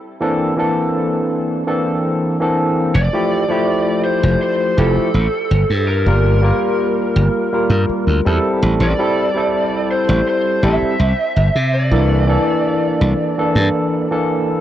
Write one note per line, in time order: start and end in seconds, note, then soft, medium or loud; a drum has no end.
0.20 0.53 E3 medium
0.20 0.53 A#3 medium
0.20 0.53 C4 medium
0.20 0.53 D4 medium
0.20 0.54 A4 loud
0.56 1.62 E3 medium
0.56 1.63 A#3 medium
0.56 1.63 C4 medium
0.56 1.63 D4 medium
0.56 1.64 A4 loud
1.67 2.36 E3 medium
1.67 2.36 A#3 medium
1.67 2.36 C4 medium
1.67 2.36 D4 medium
1.67 2.36 A4 medium
2.40 2.92 E3 medium
2.40 2.93 A#3 medium
2.40 2.93 C4 medium
2.40 2.93 D4 medium
2.40 2.93 A4 medium
2.94 3.07 F1 loud
2.94 4.04 D5 loud
3.13 3.43 F3 medium
3.13 3.43 A3 medium
3.13 3.43 E4 medium
3.13 3.44 G4 loud
3.49 4.72 F3 medium
3.49 4.73 A3 medium
3.49 4.74 E4 medium
3.49 4.74 G4 loud
4.04 4.41 C5 medium
4.23 4.35 F1 medium
4.42 4.79 C5 loud
4.77 4.96 F1 medium
4.77 5.07 F3 medium
4.77 5.08 A3 medium
4.77 5.08 E4 medium
4.77 5.08 G4 loud
4.77 5.87 A4 medium
4.97 muted slap bass stroke soft
5.14 5.26 A1 medium
5.51 5.63 G1 medium
5.70 6.08 G2 medium
5.88 8.40 A#4 medium
6.06 6.51 G1 loud
6.06 6.38 G3 loud
6.06 6.39 A#3 medium
6.06 6.39 F4 medium
6.06 6.39 A#4 loud
6.41 7.47 G3 medium
6.41 7.48 A#3 medium
6.41 7.48 F4 medium
6.41 7.49 A#4 loud
7.16 7.27 G1 loud
7.52 8.21 G3 medium
7.52 8.21 A#3 medium
7.52 8.22 F4 medium
7.52 8.22 A#4 medium
7.70 7.89 G2 loud
7.89 muted slap bass stroke soft
8.07 8.19 D2 medium
8.25 8.37 E2 medium
8.25 8.94 G3 medium
8.25 8.95 C4 medium
8.25 8.95 E4 medium
8.25 8.95 A4 loud
8.62 8.74 A1 loud
8.80 8.92 A1 loud
8.80 9.91 D5 medium
8.99 9.28 G3 medium
8.99 9.29 C4 medium
8.99 9.29 E4 medium
8.99 9.29 A4 loud
9.34 10.58 G3 medium
9.34 10.59 C4 medium
9.34 10.59 E4 medium
9.34 10.60 A4 loud
9.91 10.27 C5 medium
10.09 10.20 A1 loud
10.28 10.61 C5 medium
10.62 10.82 A1 medium
10.62 10.93 G3 medium
10.62 10.93 C4 medium
10.62 10.93 E4 medium
10.62 10.93 A4 loud
10.62 11.69 E5 loud
10.82 muted slap bass stroke soft
10.99 11.12 C2 medium
11.36 11.49 G1 medium
11.55 11.93 C3 medium
11.73 14.25 D5 medium
11.91 12.36 C2 loud
11.91 12.23 E3 loud
11.91 12.24 A#3 medium
11.91 12.24 D4 medium
11.91 12.24 A4 loud
12.27 13.33 E3 medium
12.27 13.33 A#3 medium
12.27 13.34 D4 medium
12.27 13.34 A4 loud
13.01 13.13 C2 medium
13.38 14.06 E3 medium
13.38 14.07 A#3 medium
13.38 14.07 D4 medium
13.38 14.07 A4 medium
13.55 13.68 G2 loud
14.11 14.61 E3 medium
14.11 14.61 A#3 medium
14.11 14.61 D4 medium
14.11 14.61 A4 medium